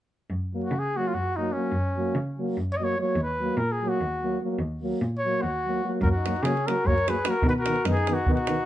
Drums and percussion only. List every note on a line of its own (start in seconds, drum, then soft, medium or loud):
6.03 davul low medium
6.26 davul high medium
6.36 davul high soft
6.45 davul high medium
6.57 davul high soft
6.68 davul high medium
6.87 davul low medium
6.98 davul high soft
7.08 davul high medium
7.25 davul high medium
7.42 davul low medium
7.66 davul high medium
7.76 davul high soft
7.85 davul high medium
7.97 davul high soft
8.07 davul high medium
8.26 davul low medium
8.37 davul high soft
8.47 davul high medium